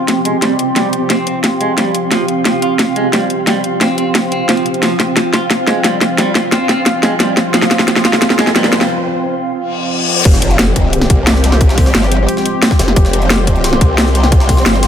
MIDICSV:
0, 0, Header, 1, 9, 480
1, 0, Start_track
1, 0, Key_signature, -4, "minor"
1, 0, Tempo, 338983
1, 1076, Time_signature, 4, 2, 24, 8
1, 21062, End_track
2, 0, Start_track
2, 0, Title_t, "Ambient pad"
2, 0, Program_c, 0, 92
2, 0, Note_on_c, 0, 60, 86
2, 0, Note_on_c, 0, 79, 80
2, 0, Note_on_c, 0, 84, 77
2, 65, Note_on_c, 0, 77, 89
2, 299, Note_off_c, 0, 79, 0
2, 12596, Note_off_c, 0, 84, 0
2, 12597, Note_off_c, 0, 60, 0
2, 12597, Note_off_c, 0, 77, 0
2, 14517, Note_on_c, 0, 60, 84
2, 14617, Note_on_c, 0, 56, 75
2, 16005, Note_on_c, 0, 84, 82
2, 21062, Note_off_c, 0, 56, 0
2, 21062, Note_off_c, 0, 60, 0
2, 21062, Note_off_c, 0, 84, 0
2, 21062, End_track
3, 0, Start_track
3, 0, Title_t, "Analog synth pad"
3, 0, Program_c, 1, 89
3, 0, Note_on_c, 1, 53, 81
3, 0, Note_on_c, 1, 60, 75
3, 0, Note_on_c, 1, 67, 90
3, 6780, Note_off_c, 1, 67, 0
3, 6835, Note_on_c, 1, 65, 92
3, 14459, Note_off_c, 1, 53, 0
3, 14459, Note_off_c, 1, 65, 0
3, 14460, Note_off_c, 1, 60, 0
3, 14519, Note_on_c, 1, 53, 82
3, 14519, Note_on_c, 1, 60, 75
3, 14519, Note_on_c, 1, 67, 91
3, 21062, Note_off_c, 1, 53, 0
3, 21062, Note_off_c, 1, 60, 0
3, 21062, Note_off_c, 1, 67, 0
3, 21062, End_track
4, 0, Start_track
4, 0, Title_t, "Clean electric guitar"
4, 0, Program_c, 2, 27
4, 357, Note_on_c, 2, 56, 75
4, 510, Note_off_c, 2, 56, 0
4, 598, Note_on_c, 2, 55, 76
4, 750, Note_off_c, 2, 55, 0
4, 1076, Note_on_c, 2, 55, 97
4, 1230, Note_off_c, 2, 55, 0
4, 1556, Note_on_c, 2, 60, 76
4, 1777, Note_off_c, 2, 60, 0
4, 1794, Note_on_c, 2, 60, 74
4, 1949, Note_off_c, 2, 60, 0
4, 2275, Note_on_c, 2, 56, 78
4, 2429, Note_off_c, 2, 56, 0
4, 2515, Note_on_c, 2, 55, 75
4, 2669, Note_off_c, 2, 55, 0
4, 2994, Note_on_c, 2, 53, 98
4, 3149, Note_off_c, 2, 53, 0
4, 3474, Note_on_c, 2, 53, 76
4, 3703, Note_off_c, 2, 53, 0
4, 3714, Note_on_c, 2, 65, 75
4, 3869, Note_off_c, 2, 65, 0
4, 4194, Note_on_c, 2, 56, 78
4, 4349, Note_off_c, 2, 56, 0
4, 4434, Note_on_c, 2, 55, 78
4, 4589, Note_off_c, 2, 55, 0
4, 4913, Note_on_c, 2, 55, 99
4, 5068, Note_off_c, 2, 55, 0
4, 5395, Note_on_c, 2, 60, 76
4, 5618, Note_off_c, 2, 60, 0
4, 5635, Note_on_c, 2, 60, 76
4, 5789, Note_off_c, 2, 60, 0
4, 6115, Note_on_c, 2, 60, 78
4, 6344, Note_off_c, 2, 60, 0
4, 6356, Note_on_c, 2, 53, 76
4, 6584, Note_off_c, 2, 53, 0
4, 6836, Note_on_c, 2, 53, 103
4, 6990, Note_off_c, 2, 53, 0
4, 7316, Note_on_c, 2, 53, 77
4, 7544, Note_off_c, 2, 53, 0
4, 7556, Note_on_c, 2, 65, 76
4, 7710, Note_off_c, 2, 65, 0
4, 8035, Note_on_c, 2, 56, 76
4, 8189, Note_off_c, 2, 56, 0
4, 8276, Note_on_c, 2, 55, 75
4, 8430, Note_off_c, 2, 55, 0
4, 8755, Note_on_c, 2, 55, 100
4, 8909, Note_off_c, 2, 55, 0
4, 9236, Note_on_c, 2, 60, 79
4, 9458, Note_off_c, 2, 60, 0
4, 9475, Note_on_c, 2, 60, 77
4, 9629, Note_off_c, 2, 60, 0
4, 9955, Note_on_c, 2, 56, 78
4, 10109, Note_off_c, 2, 56, 0
4, 10196, Note_on_c, 2, 55, 75
4, 10350, Note_off_c, 2, 55, 0
4, 10676, Note_on_c, 2, 53, 106
4, 10830, Note_off_c, 2, 53, 0
4, 11157, Note_on_c, 2, 53, 77
4, 11385, Note_off_c, 2, 53, 0
4, 11396, Note_on_c, 2, 65, 75
4, 11550, Note_off_c, 2, 65, 0
4, 11876, Note_on_c, 2, 56, 81
4, 12029, Note_off_c, 2, 56, 0
4, 12117, Note_on_c, 2, 55, 76
4, 12270, Note_off_c, 2, 55, 0
4, 21062, End_track
5, 0, Start_track
5, 0, Title_t, "Wobble bass"
5, 0, Program_c, 3, 39
5, 14517, Note_on_c, 3, 29, 99
5, 15698, Note_off_c, 3, 29, 0
5, 15717, Note_on_c, 3, 36, 99
5, 16898, Note_off_c, 3, 36, 0
5, 16917, Note_on_c, 3, 31, 95
5, 17377, Note_off_c, 3, 31, 0
5, 18117, Note_on_c, 3, 29, 101
5, 18337, Note_off_c, 3, 29, 0
5, 18357, Note_on_c, 3, 29, 98
5, 19537, Note_off_c, 3, 29, 0
5, 19557, Note_on_c, 3, 36, 102
5, 20738, Note_off_c, 3, 36, 0
5, 20757, Note_on_c, 3, 31, 95
5, 21062, Note_off_c, 3, 31, 0
5, 21062, End_track
6, 0, Start_track
6, 0, Title_t, "Impact"
6, 0, Program_c, 4, 103
6, 14517, Note_on_c, 4, 60, 77
6, 16437, Note_off_c, 4, 60, 0
6, 21062, End_track
7, 0, Start_track
7, 0, Title_t, "Reverse cymbal"
7, 0, Program_c, 5, 119
7, 13556, Note_on_c, 5, 60, 78
7, 14516, Note_off_c, 5, 60, 0
7, 21062, End_track
8, 0, Start_track
8, 0, Title_t, "Riser"
8, 0, Program_c, 6, 103
8, 6836, Note_on_c, 6, 60, 80
8, 12596, Note_off_c, 6, 60, 0
8, 21062, End_track
9, 0, Start_track
9, 0, Title_t, "Drums"
9, 117, Note_on_c, 9, 38, 50
9, 117, Note_on_c, 9, 42, 96
9, 258, Note_off_c, 9, 38, 0
9, 258, Note_off_c, 9, 42, 0
9, 357, Note_on_c, 9, 42, 67
9, 499, Note_off_c, 9, 42, 0
9, 597, Note_on_c, 9, 38, 51
9, 597, Note_on_c, 9, 42, 94
9, 738, Note_off_c, 9, 38, 0
9, 738, Note_off_c, 9, 42, 0
9, 837, Note_on_c, 9, 42, 67
9, 979, Note_off_c, 9, 42, 0
9, 1077, Note_on_c, 9, 38, 52
9, 1077, Note_on_c, 9, 42, 88
9, 1219, Note_off_c, 9, 38, 0
9, 1219, Note_off_c, 9, 42, 0
9, 1316, Note_on_c, 9, 42, 64
9, 1458, Note_off_c, 9, 42, 0
9, 1556, Note_on_c, 9, 38, 57
9, 1556, Note_on_c, 9, 42, 94
9, 1698, Note_off_c, 9, 38, 0
9, 1698, Note_off_c, 9, 42, 0
9, 1796, Note_on_c, 9, 42, 64
9, 1937, Note_off_c, 9, 42, 0
9, 2035, Note_on_c, 9, 38, 57
9, 2035, Note_on_c, 9, 42, 97
9, 2177, Note_off_c, 9, 38, 0
9, 2177, Note_off_c, 9, 42, 0
9, 2275, Note_on_c, 9, 42, 64
9, 2416, Note_off_c, 9, 42, 0
9, 2515, Note_on_c, 9, 38, 54
9, 2515, Note_on_c, 9, 42, 91
9, 2657, Note_off_c, 9, 38, 0
9, 2657, Note_off_c, 9, 42, 0
9, 2755, Note_on_c, 9, 42, 66
9, 2897, Note_off_c, 9, 42, 0
9, 2995, Note_on_c, 9, 38, 57
9, 2995, Note_on_c, 9, 42, 85
9, 3136, Note_off_c, 9, 38, 0
9, 3136, Note_off_c, 9, 42, 0
9, 3235, Note_on_c, 9, 42, 63
9, 3376, Note_off_c, 9, 42, 0
9, 3474, Note_on_c, 9, 38, 63
9, 3474, Note_on_c, 9, 42, 90
9, 3615, Note_off_c, 9, 38, 0
9, 3615, Note_off_c, 9, 42, 0
9, 3714, Note_on_c, 9, 42, 62
9, 3856, Note_off_c, 9, 42, 0
9, 3953, Note_on_c, 9, 38, 65
9, 3953, Note_on_c, 9, 42, 90
9, 4095, Note_off_c, 9, 38, 0
9, 4095, Note_off_c, 9, 42, 0
9, 4194, Note_on_c, 9, 42, 63
9, 4335, Note_off_c, 9, 42, 0
9, 4434, Note_on_c, 9, 38, 64
9, 4434, Note_on_c, 9, 42, 88
9, 4576, Note_off_c, 9, 38, 0
9, 4576, Note_off_c, 9, 42, 0
9, 4674, Note_on_c, 9, 42, 63
9, 4815, Note_off_c, 9, 42, 0
9, 4915, Note_on_c, 9, 38, 63
9, 4915, Note_on_c, 9, 42, 83
9, 5057, Note_off_c, 9, 38, 0
9, 5057, Note_off_c, 9, 42, 0
9, 5155, Note_on_c, 9, 42, 60
9, 5297, Note_off_c, 9, 42, 0
9, 5394, Note_on_c, 9, 38, 70
9, 5394, Note_on_c, 9, 42, 88
9, 5536, Note_off_c, 9, 38, 0
9, 5536, Note_off_c, 9, 42, 0
9, 5635, Note_on_c, 9, 42, 62
9, 5776, Note_off_c, 9, 42, 0
9, 5875, Note_on_c, 9, 38, 72
9, 5875, Note_on_c, 9, 42, 90
9, 6017, Note_off_c, 9, 38, 0
9, 6017, Note_off_c, 9, 42, 0
9, 6115, Note_on_c, 9, 42, 61
9, 6257, Note_off_c, 9, 42, 0
9, 6355, Note_on_c, 9, 38, 71
9, 6355, Note_on_c, 9, 42, 88
9, 6476, Note_off_c, 9, 42, 0
9, 6476, Note_on_c, 9, 42, 35
9, 6497, Note_off_c, 9, 38, 0
9, 6595, Note_off_c, 9, 42, 0
9, 6595, Note_on_c, 9, 42, 61
9, 6715, Note_off_c, 9, 42, 0
9, 6715, Note_on_c, 9, 42, 35
9, 6835, Note_off_c, 9, 42, 0
9, 6835, Note_on_c, 9, 38, 70
9, 6835, Note_on_c, 9, 42, 85
9, 6976, Note_off_c, 9, 38, 0
9, 6976, Note_off_c, 9, 42, 0
9, 7075, Note_on_c, 9, 38, 74
9, 7075, Note_on_c, 9, 42, 62
9, 7217, Note_off_c, 9, 38, 0
9, 7217, Note_off_c, 9, 42, 0
9, 7315, Note_on_c, 9, 38, 78
9, 7315, Note_on_c, 9, 42, 90
9, 7456, Note_off_c, 9, 38, 0
9, 7456, Note_off_c, 9, 42, 0
9, 7555, Note_on_c, 9, 38, 76
9, 7555, Note_on_c, 9, 42, 62
9, 7696, Note_off_c, 9, 38, 0
9, 7696, Note_off_c, 9, 42, 0
9, 7796, Note_on_c, 9, 38, 81
9, 7796, Note_on_c, 9, 42, 91
9, 7937, Note_off_c, 9, 38, 0
9, 7937, Note_off_c, 9, 42, 0
9, 8035, Note_on_c, 9, 38, 79
9, 8035, Note_on_c, 9, 42, 62
9, 8177, Note_off_c, 9, 38, 0
9, 8177, Note_off_c, 9, 42, 0
9, 8275, Note_on_c, 9, 38, 81
9, 8275, Note_on_c, 9, 42, 89
9, 8416, Note_off_c, 9, 38, 0
9, 8416, Note_off_c, 9, 42, 0
9, 8515, Note_on_c, 9, 38, 79
9, 8515, Note_on_c, 9, 42, 62
9, 8657, Note_off_c, 9, 38, 0
9, 8657, Note_off_c, 9, 42, 0
9, 8756, Note_on_c, 9, 38, 80
9, 8756, Note_on_c, 9, 42, 89
9, 8897, Note_off_c, 9, 38, 0
9, 8897, Note_off_c, 9, 42, 0
9, 8996, Note_on_c, 9, 38, 83
9, 8996, Note_on_c, 9, 42, 66
9, 9137, Note_off_c, 9, 38, 0
9, 9137, Note_off_c, 9, 42, 0
9, 9235, Note_on_c, 9, 38, 88
9, 9235, Note_on_c, 9, 42, 91
9, 9377, Note_off_c, 9, 38, 0
9, 9377, Note_off_c, 9, 42, 0
9, 9476, Note_on_c, 9, 38, 85
9, 9476, Note_on_c, 9, 42, 64
9, 9617, Note_off_c, 9, 38, 0
9, 9617, Note_off_c, 9, 42, 0
9, 9715, Note_on_c, 9, 38, 89
9, 9715, Note_on_c, 9, 42, 97
9, 9856, Note_off_c, 9, 38, 0
9, 9856, Note_off_c, 9, 42, 0
9, 9955, Note_on_c, 9, 38, 87
9, 9955, Note_on_c, 9, 42, 63
9, 10096, Note_off_c, 9, 38, 0
9, 10096, Note_off_c, 9, 42, 0
9, 10195, Note_on_c, 9, 38, 88
9, 10195, Note_on_c, 9, 42, 92
9, 10336, Note_off_c, 9, 38, 0
9, 10336, Note_off_c, 9, 42, 0
9, 10436, Note_on_c, 9, 38, 87
9, 10436, Note_on_c, 9, 42, 63
9, 10577, Note_off_c, 9, 38, 0
9, 10577, Note_off_c, 9, 42, 0
9, 10675, Note_on_c, 9, 38, 91
9, 10675, Note_on_c, 9, 42, 92
9, 10795, Note_off_c, 9, 38, 0
9, 10795, Note_on_c, 9, 38, 84
9, 10817, Note_off_c, 9, 42, 0
9, 10916, Note_off_c, 9, 38, 0
9, 10916, Note_on_c, 9, 38, 93
9, 10916, Note_on_c, 9, 42, 68
9, 11035, Note_off_c, 9, 38, 0
9, 11035, Note_on_c, 9, 38, 82
9, 11057, Note_off_c, 9, 42, 0
9, 11156, Note_off_c, 9, 38, 0
9, 11156, Note_on_c, 9, 38, 97
9, 11156, Note_on_c, 9, 42, 97
9, 11277, Note_off_c, 9, 38, 0
9, 11277, Note_on_c, 9, 38, 85
9, 11297, Note_off_c, 9, 42, 0
9, 11396, Note_off_c, 9, 38, 0
9, 11396, Note_on_c, 9, 38, 94
9, 11396, Note_on_c, 9, 42, 68
9, 11515, Note_off_c, 9, 38, 0
9, 11515, Note_on_c, 9, 38, 84
9, 11538, Note_off_c, 9, 42, 0
9, 11635, Note_off_c, 9, 38, 0
9, 11635, Note_on_c, 9, 38, 99
9, 11635, Note_on_c, 9, 42, 100
9, 11756, Note_off_c, 9, 38, 0
9, 11756, Note_on_c, 9, 38, 86
9, 11777, Note_off_c, 9, 42, 0
9, 11876, Note_off_c, 9, 38, 0
9, 11876, Note_on_c, 9, 38, 97
9, 11876, Note_on_c, 9, 42, 67
9, 11996, Note_off_c, 9, 38, 0
9, 11996, Note_on_c, 9, 38, 87
9, 12018, Note_off_c, 9, 42, 0
9, 12116, Note_off_c, 9, 38, 0
9, 12116, Note_on_c, 9, 38, 101
9, 12116, Note_on_c, 9, 42, 95
9, 12236, Note_off_c, 9, 38, 0
9, 12236, Note_on_c, 9, 38, 89
9, 12257, Note_off_c, 9, 42, 0
9, 12356, Note_off_c, 9, 38, 0
9, 12356, Note_on_c, 9, 38, 96
9, 12356, Note_on_c, 9, 42, 66
9, 12476, Note_off_c, 9, 38, 0
9, 12476, Note_on_c, 9, 38, 86
9, 12497, Note_off_c, 9, 42, 0
9, 12617, Note_off_c, 9, 38, 0
9, 14516, Note_on_c, 9, 42, 80
9, 14516, Note_on_c, 9, 49, 99
9, 14517, Note_on_c, 9, 36, 122
9, 14518, Note_off_c, 9, 42, 0
9, 14518, Note_on_c, 9, 42, 89
9, 14638, Note_on_c, 9, 38, 55
9, 14657, Note_off_c, 9, 49, 0
9, 14659, Note_off_c, 9, 36, 0
9, 14659, Note_off_c, 9, 42, 0
9, 14755, Note_on_c, 9, 42, 95
9, 14758, Note_off_c, 9, 42, 0
9, 14758, Note_on_c, 9, 42, 72
9, 14780, Note_off_c, 9, 38, 0
9, 14877, Note_off_c, 9, 42, 0
9, 14877, Note_on_c, 9, 42, 45
9, 14996, Note_off_c, 9, 42, 0
9, 14996, Note_on_c, 9, 38, 125
9, 14996, Note_on_c, 9, 42, 84
9, 14997, Note_off_c, 9, 38, 0
9, 14997, Note_off_c, 9, 42, 0
9, 14997, Note_on_c, 9, 38, 118
9, 14997, Note_on_c, 9, 42, 90
9, 15138, Note_off_c, 9, 38, 0
9, 15138, Note_off_c, 9, 42, 0
9, 15236, Note_on_c, 9, 42, 94
9, 15237, Note_off_c, 9, 42, 0
9, 15237, Note_on_c, 9, 36, 64
9, 15237, Note_on_c, 9, 42, 71
9, 15378, Note_off_c, 9, 42, 0
9, 15379, Note_off_c, 9, 36, 0
9, 15477, Note_on_c, 9, 42, 87
9, 15597, Note_on_c, 9, 40, 50
9, 15598, Note_on_c, 9, 38, 38
9, 15618, Note_off_c, 9, 42, 0
9, 15716, Note_on_c, 9, 42, 95
9, 15717, Note_off_c, 9, 42, 0
9, 15717, Note_on_c, 9, 36, 104
9, 15717, Note_on_c, 9, 42, 68
9, 15738, Note_off_c, 9, 40, 0
9, 15739, Note_off_c, 9, 38, 0
9, 15858, Note_off_c, 9, 42, 0
9, 15859, Note_off_c, 9, 36, 0
9, 15957, Note_on_c, 9, 38, 120
9, 15957, Note_on_c, 9, 42, 83
9, 16078, Note_off_c, 9, 38, 0
9, 16078, Note_on_c, 9, 38, 42
9, 16099, Note_off_c, 9, 42, 0
9, 16196, Note_on_c, 9, 42, 96
9, 16198, Note_off_c, 9, 38, 0
9, 16198, Note_off_c, 9, 42, 0
9, 16198, Note_on_c, 9, 38, 41
9, 16198, Note_on_c, 9, 42, 71
9, 16316, Note_on_c, 9, 40, 48
9, 16318, Note_off_c, 9, 38, 0
9, 16318, Note_on_c, 9, 38, 50
9, 16339, Note_off_c, 9, 42, 0
9, 16436, Note_on_c, 9, 42, 79
9, 16437, Note_off_c, 9, 42, 0
9, 16437, Note_on_c, 9, 36, 125
9, 16437, Note_on_c, 9, 42, 91
9, 16458, Note_off_c, 9, 40, 0
9, 16459, Note_off_c, 9, 38, 0
9, 16557, Note_on_c, 9, 38, 57
9, 16578, Note_off_c, 9, 36, 0
9, 16578, Note_off_c, 9, 42, 0
9, 16676, Note_on_c, 9, 40, 35
9, 16676, Note_on_c, 9, 42, 92
9, 16677, Note_on_c, 9, 36, 63
9, 16677, Note_on_c, 9, 46, 82
9, 16699, Note_off_c, 9, 38, 0
9, 16797, Note_on_c, 9, 38, 54
9, 16817, Note_off_c, 9, 40, 0
9, 16817, Note_off_c, 9, 42, 0
9, 16818, Note_off_c, 9, 46, 0
9, 16819, Note_off_c, 9, 36, 0
9, 16916, Note_off_c, 9, 38, 0
9, 16916, Note_on_c, 9, 38, 125
9, 16916, Note_on_c, 9, 42, 84
9, 16917, Note_off_c, 9, 38, 0
9, 16917, Note_off_c, 9, 42, 0
9, 16917, Note_on_c, 9, 38, 118
9, 16917, Note_on_c, 9, 42, 89
9, 17038, Note_off_c, 9, 38, 0
9, 17038, Note_on_c, 9, 38, 49
9, 17059, Note_off_c, 9, 42, 0
9, 17155, Note_on_c, 9, 42, 94
9, 17157, Note_off_c, 9, 42, 0
9, 17157, Note_on_c, 9, 42, 71
9, 17179, Note_off_c, 9, 38, 0
9, 17299, Note_off_c, 9, 42, 0
9, 17396, Note_on_c, 9, 42, 82
9, 17517, Note_on_c, 9, 38, 51
9, 17538, Note_off_c, 9, 42, 0
9, 17637, Note_on_c, 9, 42, 90
9, 17659, Note_off_c, 9, 38, 0
9, 17778, Note_off_c, 9, 42, 0
9, 17877, Note_on_c, 9, 38, 119
9, 17877, Note_on_c, 9, 42, 87
9, 17997, Note_off_c, 9, 38, 0
9, 17997, Note_on_c, 9, 36, 113
9, 17997, Note_on_c, 9, 38, 53
9, 18019, Note_off_c, 9, 42, 0
9, 18116, Note_off_c, 9, 38, 0
9, 18116, Note_on_c, 9, 38, 110
9, 18116, Note_on_c, 9, 42, 81
9, 18117, Note_off_c, 9, 42, 0
9, 18117, Note_on_c, 9, 42, 92
9, 18138, Note_off_c, 9, 36, 0
9, 18237, Note_on_c, 9, 40, 49
9, 18257, Note_off_c, 9, 38, 0
9, 18259, Note_off_c, 9, 42, 0
9, 18357, Note_on_c, 9, 36, 127
9, 18357, Note_on_c, 9, 42, 76
9, 18378, Note_off_c, 9, 40, 0
9, 18476, Note_on_c, 9, 38, 54
9, 18498, Note_off_c, 9, 36, 0
9, 18499, Note_off_c, 9, 42, 0
9, 18596, Note_on_c, 9, 42, 71
9, 18598, Note_off_c, 9, 42, 0
9, 18598, Note_on_c, 9, 42, 88
9, 18618, Note_off_c, 9, 38, 0
9, 18717, Note_off_c, 9, 42, 0
9, 18717, Note_on_c, 9, 42, 47
9, 18837, Note_off_c, 9, 42, 0
9, 18837, Note_on_c, 9, 38, 117
9, 18837, Note_on_c, 9, 42, 90
9, 18979, Note_off_c, 9, 38, 0
9, 18979, Note_off_c, 9, 42, 0
9, 19076, Note_on_c, 9, 36, 67
9, 19077, Note_on_c, 9, 42, 62
9, 19197, Note_off_c, 9, 42, 0
9, 19197, Note_on_c, 9, 42, 40
9, 19218, Note_off_c, 9, 36, 0
9, 19317, Note_off_c, 9, 42, 0
9, 19317, Note_on_c, 9, 38, 107
9, 19317, Note_on_c, 9, 42, 81
9, 19438, Note_on_c, 9, 40, 50
9, 19458, Note_off_c, 9, 38, 0
9, 19459, Note_off_c, 9, 42, 0
9, 19557, Note_on_c, 9, 36, 112
9, 19558, Note_on_c, 9, 42, 62
9, 19579, Note_off_c, 9, 40, 0
9, 19698, Note_off_c, 9, 36, 0
9, 19699, Note_off_c, 9, 42, 0
9, 19797, Note_on_c, 9, 38, 127
9, 19797, Note_on_c, 9, 42, 77
9, 19917, Note_off_c, 9, 38, 0
9, 19917, Note_on_c, 9, 38, 42
9, 19939, Note_off_c, 9, 42, 0
9, 20036, Note_off_c, 9, 38, 0
9, 20036, Note_on_c, 9, 38, 42
9, 20036, Note_on_c, 9, 42, 72
9, 20037, Note_off_c, 9, 42, 0
9, 20037, Note_on_c, 9, 42, 88
9, 20157, Note_off_c, 9, 38, 0
9, 20157, Note_on_c, 9, 38, 50
9, 20157, Note_on_c, 9, 40, 49
9, 20178, Note_off_c, 9, 42, 0
9, 20276, Note_on_c, 9, 42, 91
9, 20277, Note_off_c, 9, 42, 0
9, 20277, Note_on_c, 9, 36, 127
9, 20277, Note_on_c, 9, 42, 73
9, 20298, Note_off_c, 9, 38, 0
9, 20298, Note_off_c, 9, 40, 0
9, 20396, Note_on_c, 9, 38, 57
9, 20418, Note_off_c, 9, 36, 0
9, 20418, Note_off_c, 9, 42, 0
9, 20517, Note_on_c, 9, 36, 65
9, 20517, Note_on_c, 9, 40, 32
9, 20517, Note_on_c, 9, 42, 88
9, 20517, Note_on_c, 9, 46, 82
9, 20537, Note_off_c, 9, 38, 0
9, 20636, Note_on_c, 9, 38, 54
9, 20658, Note_off_c, 9, 36, 0
9, 20659, Note_off_c, 9, 40, 0
9, 20659, Note_off_c, 9, 42, 0
9, 20659, Note_off_c, 9, 46, 0
9, 20757, Note_off_c, 9, 38, 0
9, 20757, Note_on_c, 9, 38, 127
9, 20757, Note_on_c, 9, 42, 77
9, 20877, Note_off_c, 9, 38, 0
9, 20877, Note_on_c, 9, 38, 51
9, 20898, Note_off_c, 9, 42, 0
9, 20997, Note_off_c, 9, 38, 0
9, 20997, Note_on_c, 9, 38, 91
9, 20997, Note_on_c, 9, 42, 71
9, 21062, Note_off_c, 9, 38, 0
9, 21062, Note_off_c, 9, 42, 0
9, 21062, End_track
0, 0, End_of_file